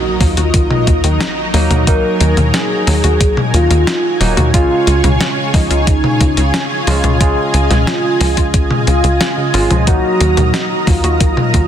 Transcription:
Already playing: tine electric piano F#3 A#3 D#4, analog synth pad F#3 D#4 A#4 D#5, soft synth lead F#4, impact
0.21 analog synth bass D#2, synth arpeggio sound F#3, soft synth lead F4, kick, open hi-hat
0.37 analog synth bass D#2, synth arpeggio sound F#4, closed hi-hat
0.54 synth arpeggio sound D#3, kick, closed hi-hat
0.71 mid tom
0.87 analog synth bass D#2, synth arpeggio sound D#3, kick, closed hi-hat
1.04 analog synth bass D#2, synth arpeggio sound D#3, closed hi-hat
1.21 synth arpeggio sound D#4, snare, closed hi-hat
1.54 analog synth bass D#2, tine electric piano F#3 A#3 D#4, synth arpeggio sound F#3, open hi-hat
1.71 analog synth bass D#2, synth arpeggio sound F#4, closed hi-hat, mid tom
1.87 synth arpeggio sound D#3, tine electric piano F#3 A#3 D#4, soft synth lead A#4, analog synth pad G#5, kick, closed hi-hat
2.21 analog synth bass D#2, synth arpeggio sound D#3, closed hi-hat
2.37 analog synth bass D#2, synth arpeggio sound D#3, closed hi-hat, mid tom
2.54 synth arpeggio sound D#4, soft synth lead G#4, snare, closed hi-hat
2.87 analog synth bass D#2, synth arpeggio sound F#3, open hi-hat
3.04 analog synth bass D#2, synth arpeggio sound F#4, closed hi-hat
3.21 synth arpeggio sound D#3, kick, closed hi-hat
3.37 mid tom
3.54 analog synth bass D#2, synth arpeggio sound D#3, soft synth lead F4, closed hi-hat
3.70 analog synth bass D#2, synth arpeggio sound D#3, closed hi-hat
3.87 synth arpeggio sound D#4, snare, closed hi-hat
4.21 analog synth bass D#1, tine electric piano F#3 A#3 D#4, synth arpeggio sound F#3, open hi-hat
4.37 analog synth bass D#2, synth arpeggio sound F#4, closed hi-hat, mid tom
4.54 synth arpeggio sound C#3, tine electric piano C#3 G#3 C#4 F4, analog synth pad F4 G#4 C#5, soft synth lead F4, kick, closed hi-hat
4.87 analog synth bass C#2, synth arpeggio sound C#3, closed hi-hat
5.04 analog synth bass C#2, synth arpeggio sound C#3, closed hi-hat, mid tom
5.21 synth arpeggio sound C#4, snare, closed hi-hat
5.54 analog synth bass C#2, synth arpeggio sound F3, soft synth lead D#4, kick, open hi-hat
5.71 analog synth bass C#2, synth arpeggio sound F4, closed hi-hat
5.87 synth arpeggio sound C#3, kick, closed hi-hat
6.04 mid tom
6.21 analog synth bass C#2, synth arpeggio sound C#3, kick, closed hi-hat
6.37 analog synth bass C#2, synth arpeggio sound C#3, closed hi-hat
6.54 synth arpeggio sound C#4, snare, closed hi-hat
6.87 analog synth bass C#2, tine electric piano C#3 G#3 C#4 F4, synth arpeggio sound F3, open hi-hat
7.04 analog synth bass C#2, synth arpeggio sound F4, closed hi-hat, mid tom
7.21 synth arpeggio sound C#3, tine electric piano C#3 G#3 C#4 F4, soft synth lead G#4, analog synth pad D#5, kick, closed hi-hat
7.54 analog synth bass C#2, synth arpeggio sound C#3, closed hi-hat
7.71 analog synth bass C#2, synth arpeggio sound C#3, snare, closed hi-hat, mid tom
7.87 synth arpeggio sound C#4, soft synth lead F4, snare, closed hi-hat
8.21 analog synth bass C#2, synth arpeggio sound F3, open hi-hat
8.37 analog synth bass C#2, synth arpeggio sound F4, kick, closed hi-hat
8.54 synth arpeggio sound C#3, kick, closed hi-hat
8.71 mid tom
8.87 analog synth bass C#2, soft synth lead F4, synth arpeggio sound G#4, closed hi-hat
9.04 analog synth bass C#2, synth arpeggio sound G#4, closed hi-hat
9.21 synth arpeggio sound F4, snare, closed hi-hat
9.37 synth arpeggio sound C#3
9.54 analog synth bass G#1, tine electric piano G#3 C#4 F4, synth arpeggio sound F4, open hi-hat
9.71 analog synth bass C#2, synth arpeggio sound F3, closed hi-hat, mid tom
9.87 synth arpeggio sound D#3, tine electric piano F#3 A#3 D#4, analog synth pad F#3 A#4 A#5, soft synth lead F#4, kick, closed hi-hat
10.21 analog synth bass D#2, synth arpeggio sound D#3, closed hi-hat
10.37 analog synth bass D#2, synth arpeggio sound D#3, closed hi-hat, mid tom
10.54 synth arpeggio sound D#4, snare, closed hi-hat
10.87 analog synth bass D#2, synth arpeggio sound F#3, soft synth lead F4, kick, open hi-hat
11.04 analog synth bass D#2, synth arpeggio sound F#4, closed hi-hat
11.21 synth arpeggio sound D#3, kick, closed hi-hat
11.37 mid tom
11.54 analog synth bass D#2, synth arpeggio sound D#3, kick, closed hi-hat

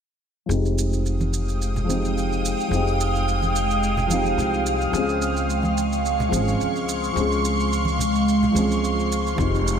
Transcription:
0.46 upright bass F1, grand piano F3 G#3 C4, ambient pad G#3 F5 G5 D#6
0.51 grand piano D#4 G4, shaker
0.65 shaker
0.78 shaker
0.93 shaker
1.06 shaker
1.21 high conga, shaker
1.33 shaker
1.49 shaker
1.62 shaker
1.76 low conga, shaker
1.84 grand piano F3 G#3 C4
1.89 grand piano D#4 G4, high conga, shaker
2.05 shaker
2.18 shaker
2.33 shaker
2.45 shaker
2.60 shaker
2.68 upright bass F1, grand piano F3 G#3 C4
2.73 grand piano D#4 G4, shaker
2.88 shaker
3.01 shaker
3.15 shaker
3.28 shaker
3.42 high conga, shaker
3.56 shaker
3.71 shaker
3.83 shaker
3.97 low conga, shaker
4.07 grand piano F3 G#3 C4, high conga, shaker
4.13 grand piano D#4 G4
4.26 shaker
4.38 upright bass C2, shaker
4.54 shaker
4.66 shaker
4.81 shaker
4.90 upright bass C#2, grand piano F3 G#3 C4, ambient pad C6 C#6
4.94 grand piano C#4 G#4, shaker
5.09 shaker
5.22 shaker
5.37 shaker
5.50 shaker
5.63 high conga, shaker
5.77 shaker
5.92 shaker
6.05 shaker
6.20 low conga, shaker
6.29 upright bass G#1, grand piano F3 G#3 C4
6.33 grand piano C#4 G#4, high conga, shaker
6.48 shaker
6.60 upright bass C#2, shaker
6.76 shaker
6.89 shaker
7.04 shaker
7.12 upright bass C#2, grand piano F3 G#3 C4
7.17 grand piano C#4 G#4, shaker
7.32 shaker
7.45 shaker
7.60 shaker
7.73 shaker
7.85 high conga, shaker
7.99 low conga, shaker
8.15 shaker
8.28 shaker
8.43 low conga, shaker
8.51 upright bass C#2, grand piano F3 G#3 C4, high conga
8.56 grand piano C#4 G#4, shaker
8.71 shaker
8.84 shaker
8.99 shaker
9.12 shaker
9.27 shaker
9.34 upright bass F1, grand piano F3 G#3 C4, ambient pad G#3 F5 G5 D#6, kick, muted conga
9.40 grand piano D#4 G4, shaker
9.55 shaker
9.68 shaker

